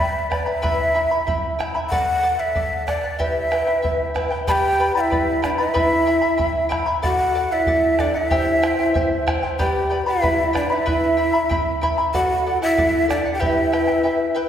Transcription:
Already playing: B4 E5 G5
0.00 D5 B5, bombo low
0.30 B4 D5 G5 B5, bombo rim, bombo low
0.46 B4 D5 E5 B5
0.62 E4 B4 E5 G5 B5, bombo low
0.94 E4 E5 G5 B5
1.11 E4 E5 B5
1.27 E4 E5 G5 B5, bombo low
1.59 E4 E5 G5 B5, bombo rim, bombo low
1.75 E4 E5 B5
1.90 A4 D5 F#5, bombo low
2.23 A4 D5 F#5
2.39 D5 E5 F#5
2.55 A4 D5 F#5, bombo low
2.87 A4 D5 F#5, bombo rim, bombo low
3.04 D5 F#5
3.19 E4 G4 B4 E5 G5, bombo low
3.51 E4 B4 E5 G5, bombo rim
3.66 E4 B4 G5
3.82 E4 B4 E5 G5, bombo low
4.14 E4 B4 E5 G5, bombo rim, bombo low
4.30 E4 B4 G5
4.47 G4 B4 D5 G5 A5 B5, bombo low
4.52 G5
4.79 B4 D5 G5 B5
4.95 E4 B4 D5 F#5 B5
5.00 E5
5.10 B4 D5 G5 B5, bombo low
5.42 D4 B4 D5 G5 B5, bombo rim, bombo low
5.58 E4 B4 D5 E5 B5
5.74 E4 B4 E5 G5 B5, bombo low
6.06 E4 E5 G5 B5
6.21 E4 E5 B5
6.38 E4 E5 G5 B5, bombo low
6.69 E4 E5 G5 B5, bombo rim, bombo low
6.86 E4 E5 B5
7.02 F#4 A4 D5 F#5, bombo low
7.35 A4 D5 F#5
7.51 E4 D5 E5 F#5
7.67 A4 D5 F#5, bombo low
7.99 D4 A4 D5 F#5, bombo rim, bombo low
8.14 E4 D5 E5 F#5
8.30 E4 G4 C5 E5 G5, bombo low
8.62 E4 C5 E5 G5, bombo rim
8.79 E4 C5 G5
8.94 E4 C5 E5 G5, bombo low
9.27 E4 C5 E5 G5, bombo rim, bombo low
9.43 E4 C5 G5
9.59 G4 B4 D5 G5 B5, bombo low
9.90 B4 D5 G5 B5
10.06 E4 B4 D5 E5 B5
10.22 B4 D5 G5 B5, bombo low
10.53 D4 B4 D5 G5 B5, bombo rim, bombo low
10.70 E4 B4 D5 E5 B5
10.86 E4 B4 E5 G5 B5, bombo low
11.17 E4 E5 G5 B5
11.33 E4 E5 B5
11.49 E4 E5 G5 B5, bombo low
11.81 E4 E5 G5 B5, bombo low
11.98 E4 E5 B5
12.13 F#4 A4 D5 F#5, bombo low
12.46 A4 D5 F#5
12.61 E4 D5 E5 F#5
12.78 A4 D5 F#5, bombo low
13.08 D4 A4 D5 F#5, bombo rim, bombo low
13.25 D5 F#5
13.33 G4 G5
13.40 E4 G4 B4 E5 G5, bombo low
13.72 E4 B4 E5 G5, bombo rim
13.87 E4 B4 G5
14.03 E4 B4 E5 G5
14.35 E4 B4 E5 G5

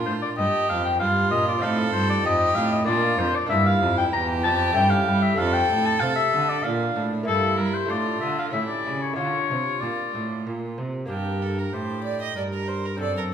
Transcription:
Already playing: A#3 D4 F4
0.06 A2 C5
0.22 D5
0.37 G2 G4 D#5
0.69 F2 F5
0.84 G5
1.00 G2 F4 F5
1.31 A#2 D#5
1.48 D5
1.59 C4 D#4 F4 F5
1.63 A2 A4
1.92 G2 C5
2.09 D5
2.25 F2 G4 D#5
2.55 A2 F5
2.72 D#5
2.84 A#2 A#3 D4 F4 D5
2.89 A#2
3.18 F2 C5
3.35 D5
3.46 G2 A#3 D4 E4 E5
3.51 G2
3.66 F5
3.81 F2
3.98 G5
4.13 E2 G4 A#5
4.44 F2 A5
4.73 G2 A3 C#4 E4 G5
4.77 G2
4.90 F5
5.07 G3
5.22 E5
5.34 A3 D4 F4 F5
5.39 F2 A4
5.53 G5
5.71 A2
5.85 A5
6.00 C3 F5
6.15 E5
6.33 D3
6.49 D5
6.63 A#2 D4 F5
6.96 A2
7.23 A#3 E4
7.27 G2 E4 A4
7.58 G3 A#4
7.74 C5
7.86 A3 D4 F4 D5
7.90 A2
8.21 D3 E5
8.39 F5
8.50 A2 A3 C#4 E4 G4 E5
8.55 A2
8.68 D5
8.85 C#3
9.02 C#5
9.13 A3 D4 F4 C#5
9.18 D3 F4
9.50 C3
9.80 A#2 D5
10.15 A2
10.47 A#2
10.78 C3
11.05 A#3 D4 G4 A#4
11.10 G2 G4
11.42 A4
11.59 A#4
11.73 A2 G4 C5
12.04 D5
12.22 D#5
12.35 G2 A#4 D5
12.54 A#4
12.68 C5
12.85 A#4
12.96 F#2 C4 D4 A4 D5
13.01 F#2
13.17 A#4

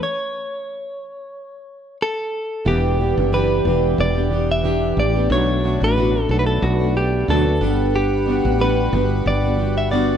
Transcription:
0.03 C#5
2.02 A4
2.65 E1 E3 B3 D4 G4
2.98 E3 B3 D4 G4
3.17 F#1 B3 D4 G4
3.32 E3 B3 D4 G4 B4
3.65 E1 E3 B3 D4 G4
3.98 E1 D5
4.15 B3 D4 G4
4.31 E3 B3 D4 G4
4.51 E5
4.63 E3 B3 D4 G4
4.97 A1 D5
5.14 B3 D4 G4
5.29 B1 B2 F#3 A3 B3 D4 F#4 C#5
5.63 F#3 A3 D4 F#4
5.81 A1 A3 D4 F#4 B4
5.96 B2 F#3 A3 D4 F#4
6.13 A3 D4 F#4
6.28 B1 F#3 A3 D4 F#4 A4
6.39 B4
6.46 A4
6.62 B1 F#4
6.79 A3 D4 F#4
6.95 A3 D4 G4
7.28 D2 B2 F#3 A3 D4 F#4 A4
7.46 A3 D4 F#4
7.61 G1 G3 B3 D4 B4 F#5
7.96 G4
8.26 G3 B3 D4 F#4
8.44 A1 B3 D4 F#4
8.59 G3 B3 D4 F#4 B4
8.92 G1 G3 B3 D4 F#4
9.26 G1 D5
9.43 B3 D4 F#4
9.57 G3 B3 D4 F#4
9.78 E5
9.91 G3 B3 D4 F#4 D5

